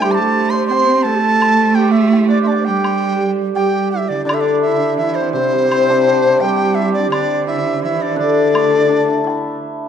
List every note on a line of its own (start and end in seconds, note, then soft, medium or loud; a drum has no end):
0.00 0.70 D3 medium
0.00 0.19 G3 medium
0.00 0.18 A3 soft
0.00 1.80 C4 medium
0.00 0.36 D4 soft
0.00 2.28 D4 medium
0.00 0.53 E4 soft
0.00 1.99 E4 soft
0.00 1.76 G4 medium
0.00 0.20 G4 medium
0.00 0.17 A4 medium
0.00 0.69 A4 soft
0.00 0.13 G5 medium
0.00 high woodblock medium
0.10 0.52 C5 soft
0.10 0.52 A5 medium
0.10 0.15 C6 medium
0.17 0.70 A3 medium
0.17 1.04 A4 medium
0.17 0.51 A4 medium
0.50 0.70 C5 medium
0.50 0.64 C5 medium
0.50 0.55 D5 medium
0.50 0.67 C6 medium
0.65 0.73 D5 medium
0.65 1.04 C6 medium
0.69 1.06 C4 medium
0.69 3.35 C5 medium
0.69 1.08 C5 medium
0.69 low woodblock soft
1.03 2.68 A3 loud
1.03 3.97 A4 medium
1.03 1.16 A4 medium
1.03 1.76 A5 loud
1.14 1.19 G4 medium
1.14 1.96 A4 medium
1.42 high woodblock medium
1.75 2.65 G4 medium
1.75 1.93 G5 medium
1.91 2.39 E4 medium
1.91 2.28 E5 medium
2.13 low woodblock soft
2.28 2.46 D4 medium
2.28 2.42 D5 medium
2.42 4.30 D4 medium
2.42 2.49 E5 medium
2.42 2.46 C6 soft
2.47 2.66 D5 medium
2.47 2.50 A5 soft
2.51 2.57 E5 soft
2.51 2.54 G5 soft
2.57 2.63 C5 soft
2.57 2.60 D5 soft
2.64 3.54 G3 medium
2.64 3.55 G4 medium
2.64 3.28 G4 medium
2.64 2.66 A4 soft
2.64 3.31 G5 medium
2.84 high woodblock medium
3.55 4.12 G3 medium
3.55 6.41 G4 medium
3.55 3.95 G4 medium
3.55 3.89 G5 medium
3.55 low woodblock soft
3.91 4.01 E4 medium
3.91 4.10 E5 medium
4.00 4.07 G4 soft
4.06 4.32 E4 medium
4.06 4.25 D5 medium
4.10 4.27 D3 medium
4.25 6.40 D3 medium
4.25 4.99 D3 medium
4.25 4.66 E4 soft
4.25 4.35 D5 medium
4.29 4.43 D4 medium
4.29 4.69 D4 medium
4.29 high woodblock medium
4.34 4.42 E5 medium
4.41 7.10 D4 medium
4.41 4.61 D5 medium
4.62 4.96 E5 medium
4.66 5.03 E4 medium
4.66 5.00 E4 medium
4.98 5.35 E3 medium
4.98 5.38 E4 medium
4.98 5.17 E5 medium
5.03 7.47 E4 medium
5.15 5.32 C5 medium
5.21 5.36 C4 medium
5.33 7.46 C3 medium
5.33 6.42 C3 medium
5.33 6.42 C5 medium
5.33 6.45 C5 medium
5.37 5.43 C4 medium
5.43 5.51 C4 soft
5.51 6.94 G3 soft
5.51 5.58 C4 medium
5.59 5.64 C4 soft
5.65 5.71 C4 soft
5.71 5.80 C4 soft
5.71 7.12 C4 soft
5.71 high woodblock medium
5.80 5.87 C4 soft
5.87 5.96 C4 soft
5.87 7.30 D4 soft
5.97 6.03 C4 soft
6.03 6.11 C4 soft
6.07 6.18 C4 soft
6.07 7.47 G4 soft
6.19 6.25 C4 soft
6.25 9.88 C4 medium
6.40 7.09 G3 medium
6.40 6.48 G4 medium
6.40 6.80 G4 medium
6.40 6.76 G5 medium
6.49 6.56 G4 medium
6.57 6.63 G4 medium
6.63 6.69 G4 soft
6.69 6.78 G4 soft
6.75 6.83 G4 soft
6.75 6.93 E5 medium
6.79 6.95 E4 medium
6.84 6.91 G4 medium
6.91 6.99 G4 soft
6.91 7.10 D5 medium
6.96 7.12 D4 medium
6.96 9.88 G4 medium
7.10 7.85 D3 medium
7.10 8.16 D4 medium
7.10 7.44 D5 medium
7.10 high woodblock medium
7.14 7.46 D4 medium
7.47 7.80 E4 medium
7.47 7.81 E4 medium
7.47 7.80 E5 medium
7.82 8.21 E3 medium
7.82 8.10 E4 medium
7.82 8.03 E4 medium
7.82 8.03 E5 medium
8.02 8.18 D4 medium
8.02 8.18 D5 medium
8.11 9.23 E4 medium
8.16 9.88 D3 medium
8.16 9.63 D3 medium
8.16 9.88 D4 medium
8.16 9.59 D4 medium
8.16 9.59 D5 medium
8.53 9.88 A3 soft
8.53 high woodblock medium
8.89 9.88 D4 soft
9.24 9.88 E4 medium
9.24 9.88 E4 soft
9.24 low woodblock soft